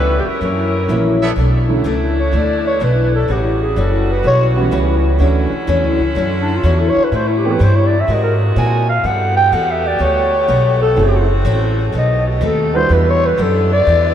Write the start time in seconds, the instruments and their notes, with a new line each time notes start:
Already playing: upright bass C#2, steel-string acoustic guitar C#3 G3 B3 E4, grand piano E3 G3 B3 C#4 E4, saxophone section G3 C#4 E4 B4
0.19 saxophone section G4
0.25 saxophone section F#3 C#4 E4 A#4, muted upright bass stroke
0.41 steel-string acoustic guitar F#2 E3 A#3 C#4, upright bass F#2
0.88 upright bass A#1, steel-string acoustic guitar F#2 E3 A#3 C#4, grand piano E3 F#3 A#3 C#4 E4
1.21 trumpet section B3 A4 C#5 D5 E5
1.36 upright bass B1, steel-string acoustic guitar B2 E3 A3 D4, saxophone section A3 C#4 D4 E4
1.69 grand piano D3 F#3 A3 C#4 E4
1.84 upright bass C#2, steel-string acoustic guitar B2 E3 A3 D4
2.20 clarinet C#5
2.32 upright bass D2, steel-string acoustic guitar B2 E3 A3 D4
2.37 clarinet D5
2.67 clarinet C#5
2.80 upright bass B1, steel-string acoustic guitar B2 E3 A3 D4
2.84 clarinet B4
3.15 clarinet A4
3.28 upright bass A1, steel-string acoustic guitar A2 G3 C#4 F#4, saxophone section C#3 G3 B3 F#4
3.32 clarinet G4
3.62 clarinet G#4
3.76 upright bass F#1, steel-string acoustic guitar A2 G3 C#4 F#4, clarinet A4
4.11 clarinet B4
4.23 upright bass B1, steel-string acoustic guitar A2 G3 C#4 F#4, clarinet C#5
4.56 grand piano E3 G3 B3 C#4 F#4
4.71 upright bass C#2, steel-string acoustic guitar A2 G3 C#4 F#4
5.19 upright bass D2, steel-string acoustic guitar D3 F#3 C#4 E4, saxophone section D3 F#3 C#4 E4, grand piano E3 A3 C#4 D4 F#4
5.52 muted upright bass stroke
5.67 upright bass E2, steel-string acoustic guitar D3 F#3 C#4 E4, grand piano E3 A3 C#4 D4 E4
5.83 upright bass D2
6.00 upright bass C#2
6.15 upright bass F#2, steel-string acoustic guitar D3 F#3 C#4 E4
6.41 clarinet D4
6.56 clarinet F4
6.63 upright bass E2, steel-string acoustic guitar D3 F#3 C#4 E4, clarinet F#4
6.80 clarinet A4
6.89 clarinet C#5
6.96 muted upright bass stroke
7.04 clarinet B4
7.11 upright bass A2, steel-string acoustic guitar A2 G3 C4 E4, saxophone section C3 G3 A3 E4
7.15 clarinet C5
7.28 clarinet E4
7.38 clarinet G4
7.44 grand piano E3 A3 B3 C4 G4
7.51 clarinet B4
7.59 upright bass G2, steel-string acoustic guitar A2 G3 C4 E4
7.63 clarinet C5
7.76 clarinet C#5
7.87 clarinet D5
8.00 clarinet E5
8.08 upright bass G#2, steel-string acoustic guitar G#3 C4 F#4 A#4, saxophone section G#3 A#3 F#4
8.13 clarinet D#5
8.23 clarinet A#4
8.56 upright bass A#2, steel-string acoustic guitar G#3 C4 F#4 A#4, clarinet G#5
8.89 clarinet F5
9.04 upright bass G2, steel-string acoustic guitar G3 B3 F#4 A4, saxophone section A3 B3 F#4 G4, clarinet F#5
9.36 clarinet G5
9.52 upright bass E2, steel-string acoustic guitar G3 B3 F#4 A4, clarinet F#5
9.71 clarinet E5
9.87 clarinet D5
9.99 upright bass D2, steel-string acoustic guitar G3 B3 F#4 A4, clarinet C#5
10.48 upright bass B1, steel-string acoustic guitar G3 B3 F#4 A4
10.82 clarinet A4
10.96 upright bass F#1, saxophone section E3 C4 F#4, steel-string acoustic guitar F#3 C4 E4 A4, grand piano A3 C4 E4 F#4 G#4
11.45 upright bass A1, steel-string acoustic guitar F#3 C4 E4 A4
11.93 upright bass B1, steel-string acoustic guitar B2 A3 C4 D#4, saxophone section C3 B3
11.97 clarinet D#5
12.27 clarinet F#4
12.41 upright bass D#2, steel-string acoustic guitar B2 A3 C4 D#4
12.45 clarinet A4
12.74 grand piano G3 D4 E4 F#4 B4, clarinet C5
12.89 upright bass E2, saxophone section D3 E3 E4, steel-string acoustic guitar E3 B3 D4 G4
12.93 clarinet B4
13.10 clarinet C#5
13.26 clarinet B4
13.37 upright bass F#2, steel-string acoustic guitar E3 B3 D4 G4
13.42 clarinet A4
13.73 clarinet D5
13.86 upright bass E2, steel-string acoustic guitar E3 B3 D4 G4